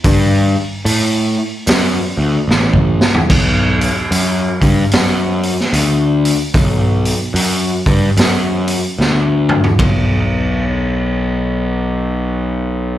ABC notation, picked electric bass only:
X:1
M:4/4
L:1/8
Q:"Swing" 1/4=74
K:Bm
V:1 name="Picked electric bass" clef=bass
G,,2 A,,2 F,, D,, A,,,2 | B,,,2 F,, G,, F,,2 D,,2 | B,,,2 F,, G,, F,,2 D,,2 | B,,,8 |]